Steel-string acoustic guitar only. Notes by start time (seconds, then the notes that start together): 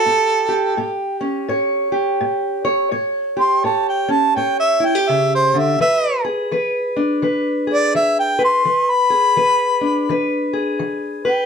0.05 A2 G4
0.49 G4
0.77 A2 G4
1.21 C#4
1.48 A2 C#5
1.92 G4
2.21 A2
2.65 C#5
2.91 A2 C#5
3.37 G4
3.64 A2 C#5
4.08 C#4
4.36 A2 C#5
4.80 E4
4.95 G4
5.09 C#3
5.54 D3
5.80 E3 B4
6.25 G#4
6.52 E3 B4
6.96 D4
7.22 E3 B4
7.67 G#4
7.95 E3
8.39 B4
8.65 E3 B4
9.10 G#4
9.36 E3 B4
9.81 D4
10.09 E3 B4
10.53 G#4
10.79 E3
11.25 B4